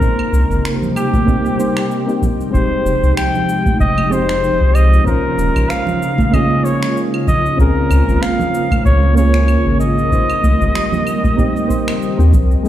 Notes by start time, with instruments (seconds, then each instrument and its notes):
Already playing: ambient pad A#3, flugelhorn A#4
0.00 ambient pad C3 G3 D#4 G4, synth keys A#3 C4 D#4 C5, kick, cabasa
0.19 claves
0.33 sub bass C2, cabasa
0.50 sub bass G1, cabasa
0.65 finger snap, cabasa
0.82 low conga, cabasa
0.96 flugelhorn G4, cabasa, claves
1.13 kick, high conga, cabasa
1.26 synth keys A#3 C4 D#4 G4, kick, cabasa
1.45 high conga, cabasa
1.58 synth keys A#3 C4 D#4 C5, cabasa
1.77 finger snap, cabasa, claves
1.91 cabasa
2.06 synth keys A#3 C4 D#4 G4, cabasa
2.22 kick, low conga, cabasa
2.41 cabasa
2.51 sub bass F1, ambient pad C3 F3 G#3, synth keys G#3 C4 D#4, flugelhorn C5, kick
2.55 synth keys G4, cabasa
2.85 sub bass F1, cabasa
3.03 sub bass C2, cabasa
3.17 flugelhorn G5, finger snap, cabasa, claves
3.35 low conga, cabasa
3.49 cabasa
3.66 kick, high conga, cabasa
3.80 sub bass F1, flugelhorn D#5, kick, cabasa
3.98 high conga, claves
4.10 synth keys G#3 C4 D#4, flugelhorn C5, cabasa
4.14 synth keys G4
4.29 finger snap, cabasa
4.44 cabasa
4.61 sub bass C2
4.75 flugelhorn D#5, cabasa, claves
4.93 cabasa
5.04 ambient pad C#3 A#3 F4, synth keys A#3 C#4 F4, flugelhorn A#4, kick, cabasa
5.09 synth keys C5
5.38 sub bass D#1, cabasa
5.56 sub bass A#1, cabasa, claves
5.70 flugelhorn F5, finger snap, cabasa
5.87 low conga, cabasa
6.02 cabasa
6.18 kick, high conga, cabasa
6.31 synth keys A#3 C#4 F4, flugelhorn D#5, kick, cabasa, claves
6.35 synth keys G#4
6.51 high conga
6.64 flugelhorn C#5, cabasa
6.83 finger snap, cabasa
6.97 cabasa
7.14 claves
7.27 flugelhorn D#5, kick, low conga, cabasa
7.46 cabasa
7.57 sub bass C#2, synth keys C4 C#4 F4, ambient pad A#4, flugelhorn A#4, kick, cabasa
7.61 synth keys G#4
7.91 sub bass C#2, cabasa, claves
8.08 sub bass G#1, cabasa
8.22 flugelhorn F5, finger snap, cabasa
8.40 low conga, cabasa
8.54 cabasa
8.71 kick, high conga, cabasa, claves
8.85 sub bass C#2, flugelhorn C#5, kick, cabasa
9.03 high conga
9.15 synth keys A#3 C#4 F4, flugelhorn C#5, cabasa
9.19 synth keys G#4
9.34 finger snap, cabasa
9.48 cabasa, claves
9.66 sub bass G#1
9.80 flugelhorn D#5, cabasa
9.98 cabasa
10.10 ambient pad D#3 G3 G4, synth keys A#3 C4 D#4, kick, cabasa
10.15 synth keys C5
10.30 cabasa, claves
10.43 sub bass C2, high conga, cabasa
10.61 sub bass G1, cabasa
10.75 finger snap, cabasa
10.92 low conga, cabasa
11.07 cabasa, claves
11.24 kick, high conga, cabasa
11.37 synth keys A#3 C4 D#4 G4, kick, cabasa
11.56 high conga, cabasa
11.68 synth keys A#3 C4 D#4 C5, kick, cabasa
11.88 finger snap, cabasa, claves
12.02 cabasa
12.17 sub bass D#2, synth keys A#3 C4 D#4 G4, cabasa
12.33 sub bass C2, kick, low conga, cabasa
12.51 cabasa
12.62 synth keys F2 G#3 A#3 C4 D#4, ambient pad D#3 G#3 A#3 F4 G4, cabasa